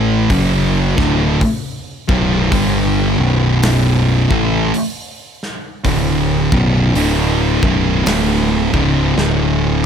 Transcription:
Already playing: picked electric bass A1, distorted electric guitar A2 E3 A3
0.30 picked electric bass F#1, distorted electric guitar F#2 C#3 F#3, kick, open hi-hat
0.97 picked electric bass D1, distorted electric guitar D2 A2 D3, kick, snare
1.41 kick, open hi-hat
2.08 picked electric bass B0, distorted electric guitar B1 F#2 B2, kick
2.51 picked electric bass G1, distorted electric guitar G2 D3 G3, kick, open hi-hat
3.18 picked electric bass B0, distorted electric guitar B1 F#2 B2
3.63 snare, open hi-hat
4.30 picked electric bass A1, distorted electric guitar A2 E3 A3, kick
4.74 open hi-hat
5.43 snare
5.84 picked electric bass D1, distorted electric guitar D2 A2 D3, kick, open hi-hat
6.52 picked electric bass B0, distorted electric guitar B1 F#2 B2, kick
6.94 picked electric bass D1, distorted electric guitar D2 A2 D3, open hi-hat
7.63 picked electric bass B0, distorted electric guitar B1 F#2 B2, kick
8.05 picked electric bass D1, distorted electric guitar D2 A2 D3, snare, open hi-hat
8.73 picked electric bass C#1, distorted electric guitar C#2 G#2 C#3, kick
9.16 picked electric bass D1, distorted electric guitar D2 A2 D3, snare

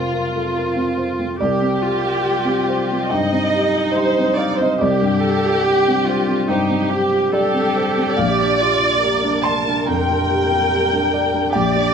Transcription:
Already playing: felt piano F2 C3 C4 A4 A#4 C5, violin section F4, viola F4
0.13 felt piano A#4
0.35 felt piano A4
0.56 felt piano A#4
0.76 felt piano C4
0.98 felt piano C5
1.19 felt piano C4
1.39 felt piano C2 D5, violin section G4, viola G4
1.61 felt piano C4
1.82 viola F4, felt piano G4
2.05 felt piano F4
2.25 felt piano G4
2.45 felt piano C4
2.69 felt piano C5
2.91 felt piano C4
3.09 felt piano G2 G5, viola D#4, violin section D#5
3.32 felt piano C4
3.54 felt piano G4
3.75 felt piano F4
3.94 felt piano G4 D#5, violin section C5
4.18 felt piano C4
4.36 violin section D5, felt piano F5
4.40 felt piano C5
4.56 violin section C5
4.60 felt piano C4 D#5
4.79 felt piano C2 D5, viola G4, violin section G4
5.02 felt piano G2
5.20 felt piano G4, viola A4
5.46 felt piano F4
5.63 viola G4, felt piano G4
5.88 felt piano C4
6.04 viola F4, felt piano C5
6.28 felt piano C4
6.48 felt piano G2 C5, viola D#4, violin section G4
6.69 felt piano C4
6.90 viola G4, felt piano G4
7.13 felt piano F4
7.31 violin section G4, felt piano G4 D5, viola A4
7.54 felt piano C4
7.76 felt piano C5
7.97 felt piano C4
8.17 felt piano A#1 F5, viola G4, violin section D5
8.40 felt piano D4
8.61 viola F4, felt piano G4
8.83 felt piano F4
9.02 felt piano G4, viola A#4
9.23 felt piano D4
9.43 felt piano D5 C6, violin section A5
9.67 felt piano D4
9.86 felt piano F2 A#5, violin section G5
10.11 felt piano D4
10.31 felt piano G4
10.51 felt piano F4
10.71 felt piano G4
10.93 felt piano D4
11.14 felt piano D5
11.34 felt piano D4
11.53 felt piano A#1 G5, viola G4, violin section D5
11.75 felt piano D4

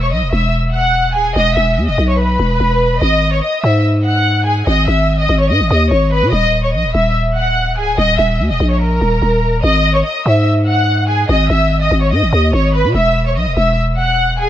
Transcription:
Already playing: 808-style bass E1
0.02 violin section C#5 C#6
0.12 808-style bass B1, violin section D#5 D#6
0.22 808-style bass E1
0.32 808-style bass E1, violin section E5 E6
0.73 violin section F#5 F#6
1.15 808-style bass D#1, violin section G#4 G#5
1.26 808-style bass E1
1.36 808-style bass E1, violin section D#5 D#6
1.57 808-style bass E1, violin section E5 E6
1.77 808-style bass E2
1.88 808-style bass E1, violin section D#5 D#6
1.98 808-style bass B1
2.09 violin section C#5 C#6
2.19 violin section B4 B5
2.39 808-style bass E1
2.60 808-style bass E1
3.02 808-style bass G#1, violin section D#5 D#6
3.32 violin section C#5 C#6
3.43 violin section D#5 D#6
3.64 808-style bass G#2, violin section E5 E6
4.05 violin section F#5 F#6
4.45 violin section G#4 G#5
4.67 808-style bass G#1, violin section D#5 D#6
4.88 808-style bass G#1, violin section E5 E6
5.19 violin section D#5 D#6
5.29 808-style bass G#1
5.39 violin section C#5 C#6
5.50 808-style bass G#2, violin section D#5 D#6
5.60 808-style bass G#1
5.71 808-style bass D#2, violin section D#5 D#6
5.91 808-style bass G#1, violin section C#5 C#6
6.12 violin section B4 B5
6.22 808-style bass B2
6.33 808-style bass D#1, violin section D#5 D#6
6.63 violin section C#5 C#6
6.74 808-style bass A#1, violin section D#5 D#6
6.84 808-style bass D#1
6.94 808-style bass D#1, violin section E5 E6
7.36 violin section F#5 F#6
7.77 808-style bass C#1, violin section G#4 G#5
7.88 808-style bass D#1
7.98 808-style bass D#1, violin section D#5 D#6
8.19 808-style bass D#1, violin section E5 E6
8.39 808-style bass D#2
8.50 808-style bass D#1, violin section D#5 D#6
8.60 808-style bass A#1
8.70 violin section C#5 C#6
8.81 violin section A#4 A#5
9.01 808-style bass D#1
9.22 808-style bass D#1
9.64 808-style bass G#1, violin section D#5 D#6
9.95 violin section C#5 C#6
10.05 violin section D#5 D#6
10.26 808-style bass G#2, violin section E5 E6
10.67 violin section F#5 F#6
11.08 violin section G#4 G#5
11.29 808-style bass G#1, violin section D#5 D#6
11.50 808-style bass G#1, violin section E5 E6
11.81 violin section D#5 D#6
11.91 808-style bass G#1
12.01 violin section C#5 C#6
12.12 808-style bass G#2, violin section D#5 D#6
12.22 808-style bass G#1
12.33 808-style bass D#2, violin section D#5 D#6
12.53 808-style bass G#1, violin section C#5 C#6
12.74 violin section B4 B5
12.84 808-style bass B2
12.95 808-style bass E1, violin section E5 E6
13.26 violin section C#5 C#6
13.36 808-style bass B1, violin section D#5 D#6
13.46 808-style bass E1
13.56 808-style bass E1, violin section E5 E6
13.97 violin section F#5 F#6
14.39 808-style bass D#1, violin section G#4 G#5

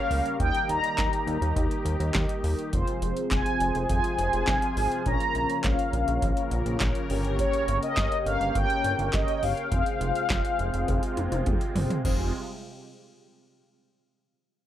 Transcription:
Already playing: analog synth pad C#3 G3 A#3 G4 A#4, analog polysynth C#4 G4 A#4 C#5 F5
0.11 analog synth bass C#2, open hi-hat
0.26 closed hi-hat
0.40 analog synth bass D#2, analog synth pad D#3 G4, analog polysynth D#4 G4 A#4 D#5 G5, kick, closed hi-hat
0.55 closed hi-hat
0.69 analog synth bass D#2, analog polysynth A#5, closed hi-hat
0.84 closed hi-hat
0.98 analog synth bass D#2, kick, snare, clap, closed hi-hat
1.13 closed hi-hat
1.27 analog synth bass D#2, closed hi-hat
1.42 analog synth bass D#2, closed hi-hat
1.56 analog synth bass D#2, kick, closed hi-hat
1.71 closed hi-hat
1.85 analog synth bass D#2, closed hi-hat
2.00 analog synth bass D#2, closed hi-hat
2.14 analog synth bass D#2, kick, snare, clap, closed hi-hat
2.29 closed hi-hat
2.44 analog synth bass D#2, open hi-hat
2.59 closed hi-hat
2.73 analog synth bass F1, analog synth pad C3 F3 G#3 F4 G#4, analog polysynth C4 F4 G#4 C5, kick, closed hi-hat
2.88 closed hi-hat
3.02 analog synth bass F1, closed hi-hat
3.17 closed hi-hat
3.31 analog synth bass F1, analog polysynth G#5, kick, snare, clap, closed hi-hat
3.46 closed hi-hat
3.60 analog synth bass F1, closed hi-hat
3.75 analog synth bass F1, closed hi-hat
3.89 analog synth bass F1, analog polysynth G#5, kick, closed hi-hat
4.04 closed hi-hat
4.19 analog synth bass F1, closed hi-hat
4.33 analog synth bass F1, closed hi-hat
4.47 analog synth bass F1, kick, snare, clap, closed hi-hat
4.62 closed hi-hat
4.77 analog synth bass G#1, open hi-hat
4.92 closed hi-hat
5.06 analog synth bass A#1, analog synth pad C#3 A#3 A#4, analog polysynth C#4 F4 A#4 C#5 A#5, kick, closed hi-hat
5.20 closed hi-hat
5.35 analog synth bass A#1, closed hi-hat
5.50 closed hi-hat
5.64 analog synth bass A#1, analog polysynth F5, kick, snare, clap, closed hi-hat
5.79 closed hi-hat
5.93 analog synth bass A#1, closed hi-hat
6.08 analog synth bass A#1, closed hi-hat
6.22 analog synth bass A#1, kick, closed hi-hat
6.37 closed hi-hat
6.51 analog synth bass A#1, closed hi-hat
6.66 analog synth bass A#1, closed hi-hat
6.80 analog synth bass A#1, kick, snare, clap, closed hi-hat
6.95 closed hi-hat
7.10 analog synth bass G1, analog synth pad A#3 G5, analog polysynth C#4 G4 A#4 C#5, open hi-hat
7.25 closed hi-hat
7.39 analog polysynth C#5, kick, closed hi-hat
7.53 closed hi-hat
7.68 analog synth bass G1, closed hi-hat
7.83 analog polysynth D#5, closed hi-hat
7.97 analog synth bass G1, kick, snare, clap, closed hi-hat
8.12 closed hi-hat
8.26 analog synth bass G1, analog polysynth F5, closed hi-hat
8.41 analog synth bass G1, closed hi-hat
8.55 analog synth bass G1, analog polysynth G5, kick, closed hi-hat
8.70 closed hi-hat
8.84 analog synth bass G1, closed hi-hat
8.99 analog synth bass G1, closed hi-hat
9.13 analog synth bass G1, analog polysynth D#5, kick, snare, clap, closed hi-hat
9.28 closed hi-hat
9.43 analog synth bass G1, analog polysynth F5, open hi-hat
9.57 closed hi-hat
9.72 analog synth bass F1, analog synth pad C3 G#3 F4, analog polysynth C4 F4 G#4 C5, kick, closed hi-hat
9.86 closed hi-hat
10.01 analog synth bass F1, closed hi-hat
10.15 closed hi-hat
10.30 analog synth bass F1, kick, snare, clap, closed hi-hat
10.45 closed hi-hat
10.59 analog synth bass F1, closed hi-hat
10.74 analog synth bass F1, closed hi-hat
10.88 analog synth bass F1, kick, closed hi-hat, high tom
11.03 closed hi-hat
11.17 analog synth bass F1, closed hi-hat, mid tom
11.32 analog synth bass F1, closed hi-hat, mid tom
11.46 analog synth bass F1, kick, closed hi-hat, mid tom
11.61 closed hi-hat
11.75 analog synth bass G1, floor tom, open hi-hat
11.90 closed hi-hat, floor tom
12.05 analog synth bass F1, analog synth pad C3 G3 G#3 F4 G4, analog polysynth C4 F4 G#4 C5, kick, crash

